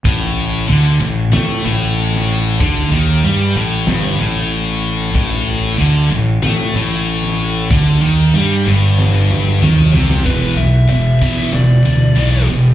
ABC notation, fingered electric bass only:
X:1
M:4/4
L:1/8
Q:1/4=94
K:Am
V:1 name="Fingered electric bass" clef=bass
A,,,2 D,, A,,, A,, A,,,3 | D,, ^D,, G,, A,,, G,,, A,,,3 | A,,,2 D,, A,,, A,, A,,,3 | D,, ^D,, G,, G,,,3 D,, C,, |
[K:Em] E,,, B,,, E,,, E,, E,,, D,, B,,, E,,, |]